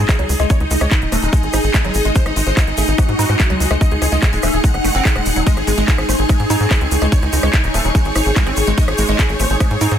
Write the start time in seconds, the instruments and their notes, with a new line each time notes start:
Already playing: string section G#3 G#4 D#5 D#6, synth drone D#4, supersaw synth G#4, impact
0.09 synth arpeggio sound G#3, kick, cross-stick, clap, closed hi-hat, shaker
0.19 analog synth bass C#2, synth arpeggio sound F#3, closed hi-hat
0.29 analog synth bass C#2, open hi-hat, shaker
0.39 analog synth bass C#2, synth arpeggio sound G#3, cross-stick, shaker
0.50 supersaw synth C#5, kick, closed hi-hat, shaker
0.60 analog synth bass C#2, supersaw synth D#4, closed hi-hat
0.71 analog synth bass C#2, synth arpeggio sound G#3, supersaw synth D#4, open hi-hat, shaker
0.81 analog synth bass C#2, synth arpeggio sound G#3, supersaw synth C#5, cross-stick, closed hi-hat, shaker
0.91 supersaw synth D#4, kick, clap, closed hi-hat, shaker
1.02 analog synth bass D#1, supersaw synth D#4, closed hi-hat
1.12 analog synth bass D#1, wobble bass G#3, synth arpeggio sound A3, supersaw synth A4, cross-stick, open hi-hat, shaker
1.22 analog synth bass D#1, wobble bass G#3, supersaw synth D#4, closed hi-hat, shaker
1.33 synth arpeggio sound G#3, supersaw synth G#4, kick, closed hi-hat, shaker
1.43 analog synth bass G#1, closed hi-hat
1.53 analog synth bass G#1, synth arpeggio sound D#4, cross-stick, open hi-hat, shaker
1.64 analog synth bass G#1, closed hi-hat, shaker
1.74 wobble bass G#3, synth arpeggio sound G#3, kick, clap, closed hi-hat, shaker
1.84 analog synth bass G#1, synth arpeggio sound F#3, wobble bass G#3, cross-stick, closed hi-hat
1.94 analog synth bass G#1, open hi-hat, shaker
2.05 analog synth bass G#1, synth arpeggio sound G#3, closed hi-hat, shaker
2.15 synth arpeggio sound G#3, supersaw synth C5, kick, closed hi-hat, shaker
2.26 analog synth bass G#1, supersaw synth D#4, cross-stick, closed hi-hat
2.36 analog synth bass G#1, synth arpeggio sound G#3, supersaw synth D#4, open hi-hat, shaker
2.47 analog synth bass G#1, synth arpeggio sound G#3, supersaw synth C5, closed hi-hat, shaker
2.57 supersaw synth D#4, kick, cross-stick, clap, closed hi-hat, shaker
2.67 analog synth bass G#1, supersaw synth D#4, closed hi-hat
2.77 analog synth bass G#1, synth arpeggio sound A3, supersaw synth G#4, open hi-hat, shaker
2.87 analog synth bass G#1, supersaw synth D#4, closed hi-hat, shaker
2.98 synth arpeggio sound G#3, supersaw synth F#4, kick, cross-stick, closed hi-hat, shaker
3.09 analog synth bass G#2, closed hi-hat
3.19 analog synth bass G#2, wobble bass C4, synth arpeggio sound D#4, open hi-hat, shaker
3.29 analog synth bass G#2, wobble bass C4, cross-stick, closed hi-hat, shaker
3.39 synth arpeggio sound G#3, kick, clap, closed hi-hat, shaker
3.50 analog synth bass C#2, synth arpeggio sound F#3, wobble bass G#3, closed hi-hat
3.60 analog synth bass C#2, open hi-hat, shaker
3.70 analog synth bass C#2, synth arpeggio sound G#3, cross-stick, closed hi-hat, shaker
3.81 synth arpeggio sound G#3, supersaw synth D#5, kick, closed hi-hat, shaker
3.91 analog synth bass C#2, supersaw synth G#4, closed hi-hat
4.02 analog synth bass C#2, synth arpeggio sound G#3, supersaw synth G#4, cross-stick, open hi-hat, shaker
4.12 analog synth bass C#2, synth arpeggio sound G#3, supersaw synth D#5, closed hi-hat, shaker
4.22 supersaw synth G#4, kick, clap, closed hi-hat, shaker
4.33 analog synth bass D#1, wobble bass G#3, supersaw synth G#4, closed hi-hat, shaker
4.43 analog synth bass D#1, synth arpeggio sound A3, supersaw synth E5, cross-stick, open hi-hat, shaker
4.53 analog synth bass D#1, supersaw synth G#4, closed hi-hat, shaker
4.64 synth arpeggio sound G#3, supersaw synth F#5, kick, closed hi-hat, shaker
4.74 analog synth bass F#1, cross-stick, closed hi-hat
4.84 analog synth bass F#1, synth arpeggio sound A3, open hi-hat, shaker
4.95 analog synth bass F#1, wobble bass F#3, synth arpeggio sound C4, closed hi-hat, shaker
5.05 wobble bass F#3, synth arpeggio sound G#4, kick, clap, closed hi-hat, shaker
5.16 analog synth bass D#1, synth arpeggio sound G#3, cross-stick, closed hi-hat
5.26 analog synth bass D#1, open hi-hat, shaker
5.36 analog synth bass D#1, synth arpeggio sound F#3, closed hi-hat, shaker
5.47 synth arpeggio sound G#3, supersaw synth D#5, kick, closed hi-hat, ride, shaker
5.57 analog synth bass G#1, supersaw synth G#4, cross-stick, closed hi-hat
5.67 analog synth bass G#1, synth arpeggio sound G#3, supersaw synth G#4, open hi-hat, shaker
5.77 analog synth bass G#1, synth arpeggio sound G#3, supersaw synth D#5, closed hi-hat, shaker
5.88 supersaw synth G#4, kick, clap, closed hi-hat, ride, shaker
5.98 analog synth bass G#1, supersaw synth G#4, cross-stick, closed hi-hat
6.09 analog synth bass G#1, synth arpeggio sound A3, supersaw synth C5, open hi-hat, shaker
6.19 analog synth bass G#1, supersaw synth G#4, closed hi-hat
6.29 synth arpeggio sound G#3, supersaw synth G#4, kick, cross-stick, closed hi-hat, ride, shaker
6.40 analog synth bass G#2, closed hi-hat
6.50 analog synth bass G#2, wobble bass C4, synth arpeggio sound D#4, string section C#6, open hi-hat, shaker
6.54 string section C#5
6.60 analog synth bass G#2, wobble bass C4, closed hi-hat, shaker
6.71 synth arpeggio sound G#3, kick, cross-stick, clap, closed hi-hat, ride, shaker
6.81 analog synth bass C#2, synth arpeggio sound C4, closed hi-hat
6.91 analog synth bass C#2, open hi-hat, shaker
7.02 analog synth bass C#2, synth arpeggio sound G#3, cross-stick, closed hi-hat, shaker
7.12 supersaw synth C#5, kick, closed hi-hat, ride, shaker
7.22 analog synth bass C#2, supersaw synth D#4, closed hi-hat
7.33 analog synth bass C#2, synth arpeggio sound G#3, supersaw synth D#4, open hi-hat, shaker
7.43 analog synth bass C#2, synth arpeggio sound G#3, supersaw synth C#5, cross-stick, closed hi-hat
7.53 supersaw synth D#4, kick, clap, closed hi-hat, ride, shaker
7.64 analog synth bass D#1, supersaw synth D#4, closed hi-hat
7.74 analog synth bass D#1, wobble bass G#3, synth arpeggio sound A3, supersaw synth A4, cross-stick, open hi-hat, shaker
7.85 analog synth bass D#1, wobble bass G#3, supersaw synth D#4, closed hi-hat, shaker
7.95 synth arpeggio sound G#3, supersaw synth G#4, kick, closed hi-hat, ride, shaker
8.05 analog synth bass G#1, closed hi-hat
8.16 analog synth bass G#1, synth arpeggio sound D#4, cross-stick, open hi-hat, shaker
8.26 analog synth bass G#1, closed hi-hat, shaker
8.36 wobble bass G#3, synth arpeggio sound G#3, kick, clap, closed hi-hat, ride, shaker
8.47 analog synth bass G#1, wobble bass G#3, synth arpeggio sound C4, cross-stick, closed hi-hat
8.57 analog synth bass G#1, open hi-hat, shaker
8.67 analog synth bass G#1, synth arpeggio sound G#3, closed hi-hat, shaker
8.78 synth arpeggio sound G#3, supersaw synth D#5, kick, closed hi-hat, ride, shaker
8.88 analog synth bass G#1, supersaw synth G#4, cross-stick, closed hi-hat
8.98 analog synth bass G#1, synth arpeggio sound G#3, supersaw synth G#4, open hi-hat, shaker
9.08 analog synth bass G#1, synth arpeggio sound G#3, supersaw synth D#5, closed hi-hat, shaker
9.19 supersaw synth G#4, kick, cross-stick, clap, closed hi-hat, ride, shaker
9.29 analog synth bass G#1, supersaw synth G#4, closed hi-hat
9.40 analog synth bass G#1, synth arpeggio sound A3, supersaw synth C5, open hi-hat, shaker
9.50 analog synth bass G#1, supersaw synth G#4, closed hi-hat, shaker
9.60 synth arpeggio sound G#3, supersaw synth G#4, kick, cross-stick, closed hi-hat, ride, shaker
9.71 analog synth bass G#2, closed hi-hat
9.81 analog synth bass G#2, wobble bass C4, synth arpeggio sound D#4, open hi-hat, shaker
9.91 analog synth bass G#2, wobble bass C4, cross-stick, closed hi-hat, shaker